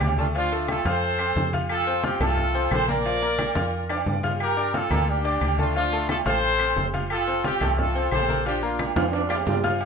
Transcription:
Already playing: D4 G4 D5 D6
0.01 D2, high conga, low timbale, low agogo, claves
0.17 A3 D4 F4 A4 A5, high conga
0.35 F3 D4 F4 F5, high conga, low agogo
0.52 A3 A4 A5, high conga
0.68 F4 A4, high conga, low agogo, claves
0.85 F2 F4 A4 C5 F5 F6, high conga, low agogo
1.02 high conga
1.19 C4 C5 C6, high conga, low agogo, claves
1.36 F2, high conga, low timbale
1.53 F4 F5 F6, high conga, low agogo
1.69 F4 A4, high conga, low agogo, claves
1.87 C4 C5 C6, high conga
2.04 C4 F4 G4 F5 F6, high conga, low agogo
2.20 C2 A3 F4 A4 A5, high conga, low conga, low agogo, claves
2.37 high conga, low conga
2.55 C4 C5 C6, high conga, low agogo
2.71 A#1 A4 C5, high conga, low agogo, claves
2.88 A#3 A#4 D5 A#5, high conga
3.05 F3 F4 F5, high conga, low agogo
3.22 A#3 A#4 A#5, high conga
3.39 high conga, low agogo, claves
3.55 F2 F4 F5 F6, high conga, low agogo
3.72 high conga
3.89 D4 D5 D6, high conga, high timbale, low agogo, claves
4.06 G2, high conga, high timbale
4.23 F4 F5 F6, high conga, low timbale, low agogo
4.40 G4 A#4, high conga, low agogo, claves
4.57 D4 D5 D6, high conga
4.74 F4 A4 F5 F6, high conga, low agogo
4.90 D2 A#3 A#4 A#5, high conga, low conga, low agogo, claves
5.08 D4 G4, high conga
5.24 D4 D5 D6, high conga, low agogo
5.41 D2, high conga, low agogo, claves
5.58 A3 D4 F4 A4 A5, high conga
5.75 F3 D4 F4 F5, high conga, low agogo
5.92 A3 A4 A5, high conga
6.09 F4 A4, high conga, low agogo, claves
6.26 A1 F4 A4 C5 F5 F6, high conga, low agogo
6.42 high conga
6.59 C4 C5 C6, high conga, low agogo, claves
6.76 F1, high conga, low timbale
6.93 F4 F5 F6, high conga, low agogo
7.10 F4 A4, low agogo, claves
7.27 C4 C5 C6, high conga
7.44 C4 F4 G4 F5 F6, high conga, low agogo
7.61 C2 A3 A4 A5, high conga, low conga, low agogo, claves
7.78 F4 A4, high conga, low conga
7.95 C4 C5 C6, high conga, low agogo
8.12 A#1 A4 C5, high conga, low timbale, low agogo, claves
8.29 A#3 A#4 A#5, high conga
8.46 F3 D4 F4 G4 F5, high conga, low agogo
8.63 A#3 D4 F4 A#4 A#5, high conga
8.79 high conga, low agogo, claves
8.96 F2 F4 F5 F6, high conga, high timbale, low agogo
9.12 D4, high conga, high timbale
9.29 D4 F4 D5 D6, high conga, low timbale, low agogo, claves
9.46 G2 F4, high conga, low timbale
9.64 F4 F5 F6, high conga, low timbale, low agogo
9.81 F5, high conga, low agogo

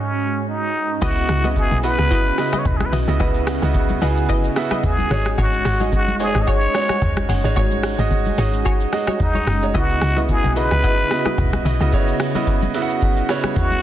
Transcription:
Already playing: G#2 G#3 C#4 D#4 F#4 G#4
0.48 D#4
1.01 C#2 C#3 B3 C#4 E4 F#4 B4 D#5, kick, crash, shaker
1.17 shaker
1.29 C#2, cross-stick, open hi-hat, shaker
1.44 C#3 B3 E4 F#4 B4 D#5, high conga, shaker
1.56 G#4, kick, low conga, shaker
1.71 B1, high conga, shaker
1.83 C#3 B3 E4 F#4 B4 D#5 F#5, open hi-hat, shaker
1.99 C#2, cross-stick, shaker
2.11 E4 F#4 B4 D#5, kick, shaker
2.26 shaker
2.38 C#3 B3 E4 F#4 D#5, cross-stick, open hi-hat, shaker
2.53 E4 F#4 B4 D#5, cross-stick, high conga, shaker
2.58 C#5
2.65 B1 B4, kick, mid tom, low conga, shaker
2.77 G#4, cross-stick, high conga, shaker
2.86 B4
2.92 B1 E4 F#4 B4 D#5, open hi-hat, low conga, shaker
3.08 C#2 C#3 B3 E4 F#4 D#5, shaker
3.20 C#2 C#3 B3 E4 F#4 B4 D#5, kick, shaker
3.35 shaker
3.47 cross-stick, open hi-hat, shaker
3.62 C#2 C#3 B3 E4 F#4 D#5, high conga, shaker
3.74 kick, low conga, shaker
3.89 high conga, shaker
4.02 C#2 C#3 B3 E4 F#4 G#4 B4 D#5, open hi-hat, shaker
4.17 shaker
4.29 E4 F#4 B4 D#5, kick, shaker
4.44 shaker
4.56 C#3 B3 E4 F#4 E5, cross-stick, open hi-hat, shaker
4.71 E4 F#4 B4 D#5, cross-stick, high conga, shaker
4.83 G#4, kick, mid tom, low conga, shaker
4.98 high conga, shaker
5.11 G#1 G#3 C#4 D#4 F#4 G#4 C#5, cross-stick, open hi-hat, low conga, shaker
5.26 cross-stick, shaker
5.38 G#1 F#4 G#4 C#5, kick, shaker
5.53 shaker
5.65 G#1, cross-stick, open hi-hat, shaker
5.80 G#3 D#4 F#4 G#4 C#5 D#5, high conga, shaker
5.92 F#4, kick, low conga, shaker
6.08 F#1, high conga, shaker
6.20 G#3 D#4 F#4 G#4 C5 C#5, open hi-hat, shaker
6.28 C#5
6.35 G#1, cross-stick, shaker
6.42 D#5
6.47 F#4 G#4 C#5, kick, shaker
6.62 shaker
6.75 G#3 D#4 F#4 C#5, cross-stick, open hi-hat, shaker
6.89 F#4 G#4 C#5, cross-stick, high conga, shaker
7.02 F#1, kick, mid tom, low conga, shaker
7.17 cross-stick, high conga, shaker
7.29 F#1 F#4 G#4 C#5, open hi-hat, low conga, shaker
7.44 G#1 G#3 D#4 F#4 C#5, shaker
7.56 G#1 G#3 D#4 F#4 G#4 C#5, kick, shaker
7.71 high conga, shaker
7.83 cross-stick, open hi-hat, shaker
7.99 G#1 G#3 D#4 F#4 D#5, high conga, shaker
8.11 kick, low conga, shaker
8.26 high conga, shaker
8.38 G#1 G#3 D#4 F#4 G#4 C#5 D#5, open hi-hat, shaker
8.53 shaker
8.65 F#4 G#4 C#5, kick, shaker
8.81 shaker
8.93 G#3 D#4 F#4 D#5, cross-stick, open hi-hat, shaker
9.07 F#4 G#4 C#5, cross-stick, high conga, shaker
9.20 D#4, kick, mid tom, low conga, shaker
9.35 F#4 G#4 C#5, high conga, shaker
9.47 F#1, cross-stick, open hi-hat, low conga, shaker
9.62 G#3 D#4 F#4 C#5, shaker
9.74 C#2 C#3 B3 E4 F#4 B4 D#5, kick, shaker
9.89 shaker
10.02 C#2, cross-stick, open hi-hat, shaker
10.16 C#3 B3 E4 F#4 B4 D#5, high conga, shaker
10.29 G#4, kick, low conga, shaker
10.44 B1, high conga, shaker
10.56 C#3 B3 D#4 E4 F#4 B4 D#5, open hi-hat, shaker
10.63 E4
10.71 C#2, cross-stick, shaker
10.83 E4 F#4 B4 D#5, kick, shaker
10.99 shaker
11.11 C#3 B3 E4 F#4 D#5, cross-stick, open hi-hat, shaker
11.26 E4 F#4 B4 D#5, cross-stick, high conga, shaker
11.38 B1, kick, mid tom, low conga, shaker
11.53 cross-stick, high conga, shaker
11.65 B1 E4 F#4 B4 D#5, open hi-hat, low conga, shaker
11.80 C#2 C#3 B3 E4 F#4 D#5, shaker
11.93 C#3 B3 E4 F#4 C#5, kick, shaker
12.08 shaker
12.20 cross-stick, open hi-hat, shaker
12.35 C#3 B3 E4 F#4 D#5, high conga, shaker
12.47 kick, low conga, shaker
12.62 high conga, shaker
12.74 C#3 B3 E4 F#4 E5, open hi-hat, shaker
12.82 F#5
12.89 shaker
13.02 kick, shaker
13.17 shaker
13.29 C#3 B3 E4 F#4 C#5, cross-stick, open hi-hat, shaker
13.44 cross-stick, high conga, shaker
13.56 F#4, kick, mid tom, low conga, shaker
13.71 high conga, shaker

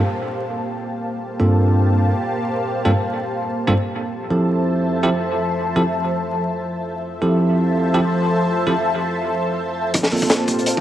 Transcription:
Already playing: A#3 G4 C5 F5 A5, downlifter
1.21 A#3 G4 C5 F5 A5
1.40 G2 A#3 C4 D4 F4 A4
2.85 G2 A#3 C4 D4 F4 A4
3.67 G2 A#3 C4 D4 F4 A4
4.12 F3 A4 C5 E5 A5
4.30 F3 C4 E4 G4 A4
5.03 F3 C4 E4 G4 A4
5.76 F3 C4 E4 G4 A4
7.03 F3 A4 C5 E5 A5
7.22 F3 C4 E4 G4 A4
7.94 F3 C4 E4 G4 A4
8.67 F3 C4 E4 G4 A4
9.94 G1 A#3 G4 C5 F5 A5, kick, closed hi-hat, riser
10.03 snare
10.12 A#3 C4 F4 A4, open hi-hat
10.22 kick
10.30 snare, closed hi-hat
10.48 kick, closed hi-hat
10.59 closed hi-hat
10.66 closed hi-hat
10.77 F1, kick

